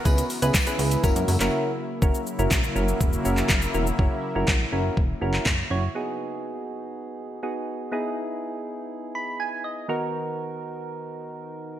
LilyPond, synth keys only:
\new Staff \with { instrumentName = "Synth keys" } { \time 4/4 \key fis \mixolydian \tempo 4 = 122 << { r1 | r1 | r1 | r1 |
r2 r8 b''8 gis''8 dis''8 | r1 | } \\ { <b cis' e' gis' b'>8 r16 <b cis' e' gis' b'>16 r16 <b cis' e' gis' b'>8. <ais cis' e' fis' ais'>8 r16 <ais cis' e' fis' ais'>8. r8 | <cis' e' fis' ais'>8 r16 <cis' e' fis' ais'>16 r8 <cis' e' fis' ais'>8 r8 <cis' e' fis' ais'>8 r8 <cis' e' fis' ais'>16 r16 | <cis' e' fis' ais'>8 r16 <cis' e' fis' ais'>16 r8 <cis' e' fis' ais'>8 r8 <cis' e' fis' ais'>8 r8 <cis' e' fis' cis''>16 r16 | <b dis' fis' gis'>2. <b dis' fis' gis'>4 |
<b dis' e' gis'>1 | <dis b dis' fis' ais'>1 | } >> }